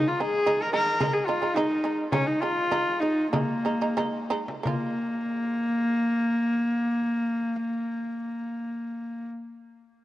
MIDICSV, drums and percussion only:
0, 0, Header, 1, 2, 480
1, 0, Start_track
1, 0, Tempo, 546448
1, 1861, Tempo, 600000
1, 1862, Time_signature, 4, 2, 24, 8
1, 2821, Tempo, 643777
1, 3301, Tempo, 701754
1, 7462, End_track
2, 0, Start_track
2, 0, Title_t, "Frame drum"
2, 302, Note_on_c, 9, 64, 22
2, 389, Note_off_c, 9, 64, 0
2, 418, Note_on_c, 9, 64, 64
2, 506, Note_off_c, 9, 64, 0
2, 651, Note_on_c, 9, 64, 23
2, 739, Note_off_c, 9, 64, 0
2, 885, Note_on_c, 9, 64, 69
2, 973, Note_off_c, 9, 64, 0
2, 1250, Note_on_c, 9, 64, 24
2, 1338, Note_off_c, 9, 64, 0
2, 1374, Note_on_c, 9, 64, 65
2, 1461, Note_off_c, 9, 64, 0
2, 1866, Note_on_c, 9, 64, 79
2, 1946, Note_off_c, 9, 64, 0
2, 2224, Note_on_c, 9, 64, 25
2, 2304, Note_off_c, 9, 64, 0
2, 2339, Note_on_c, 9, 64, 71
2, 2419, Note_off_c, 9, 64, 0
2, 2581, Note_on_c, 9, 64, 22
2, 2661, Note_off_c, 9, 64, 0
2, 2833, Note_on_c, 9, 64, 73
2, 2908, Note_off_c, 9, 64, 0
2, 3184, Note_on_c, 9, 64, 23
2, 3258, Note_off_c, 9, 64, 0
2, 3309, Note_on_c, 9, 64, 63
2, 3377, Note_off_c, 9, 64, 0
2, 3657, Note_on_c, 9, 64, 58
2, 3726, Note_off_c, 9, 64, 0
2, 3774, Note_on_c, 9, 64, 80
2, 3843, Note_off_c, 9, 64, 0
2, 7462, End_track
0, 0, End_of_file